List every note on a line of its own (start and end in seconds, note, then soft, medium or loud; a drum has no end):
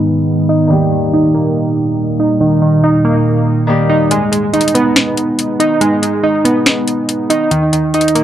0.00 0.67 G#2 medium
0.00 0.66 D#3 medium
0.00 0.67 D#3 medium
0.00 0.49 G#3 medium
0.00 0.76 G#3 medium
0.00 0.67 B3 medium
0.00 0.70 B3 medium
0.00 0.48 D#4 medium
0.00 0.68 G#4 medium
0.49 0.70 D#4 medium
0.67 4.08 D#2 medium
0.67 4.08 A#2 medium
0.67 3.66 D#3 medium
0.67 0.91 D#3 medium
0.67 3.67 G3 medium
0.67 4.08 G3 medium
0.67 3.68 A#3 medium
0.73 3.65 G4 medium
0.92 2.20 D#3 medium
1.13 2.18 D#4 medium
1.34 2.62 A#3 medium
2.20 2.82 D#4 medium
2.40 2.61 D#3 medium
2.62 3.90 D#3 medium
2.84 3.88 D#4 medium
3.05 4.11 A#3 medium
3.67 4.16 D#3 medium
3.67 4.16 G3 medium
3.67 4.11 A#3 medium
3.67 4.12 G4 medium
3.89 4.11 D#4 medium
4.11 4.31 G#3 medium
4.11 closed hi-hat medium
4.32 5.60 G#3 medium
4.32 closed hi-hat medium
4.53 5.59 D#4 medium
4.53 closed hi-hat soft
4.61 closed hi-hat medium
4.68 closed hi-hat medium
4.75 6.02 B3 medium
4.75 closed hi-hat medium
4.96 finger snap loud
4.96 snare loud
4.96 closed hi-hat medium
5.17 closed hi-hat medium
5.39 closed hi-hat medium
5.60 6.22 D#4 medium
5.60 closed hi-hat medium
5.81 6.01 G#3 medium
5.81 closed hi-hat medium
6.02 7.30 G#3 medium
6.02 closed hi-hat medium
6.23 7.29 D#4 medium
6.45 7.51 B3 medium
6.45 closed hi-hat medium
6.66 finger snap loud
6.66 snare loud
6.66 closed hi-hat medium
6.88 closed hi-hat medium
7.09 closed hi-hat medium
7.30 7.51 D#4 medium
7.30 closed hi-hat medium
7.51 7.71 D#3 medium
7.51 closed hi-hat medium
7.73 8.24 D#3 medium
7.73 closed hi-hat medium
7.94 8.24 D#4 medium
7.94 closed hi-hat soft
8.01 closed hi-hat medium
8.08 closed hi-hat medium
8.15 8.24 A#3 medium
8.15 closed hi-hat medium